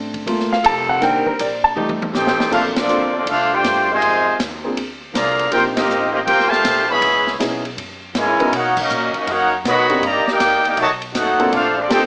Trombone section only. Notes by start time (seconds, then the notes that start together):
2.13 C4 D#4 G4
2.53 A3 D4 F4
2.76 F3 A3 D4
3.14 F3 A3 D4
3.28 A3 D4 F4
3.53 A3 D4 G4
3.90 C3 D#3 G#3
5.13 D3 F3 A#3
5.51 A#3 C4 G4
5.74 A#3 C4 D#4
6.11 A#3 C4 D#4
6.25 A#3 C4 G4
6.50 A#2 C3 A3
6.88 E3 G#3 B3
8.15 C#3 E3 G#3
8.54 A#3 D#4 F#4
8.78 F#3 A#3 D#4
9.15 F#3 A#3 D#4
9.28 A#3 D#4 F#4
9.66 D#3 F#3 B3
10.02 D#3 G3 A#3
10.28 A#3 D#4 G4
10.64 A#3 D#4 G4
10.77 D#3 F#3 A3
11.14 A3 D#4 F#4
11.51 A3 D4 F4
11.76 F3 A3 D4
11.88 G4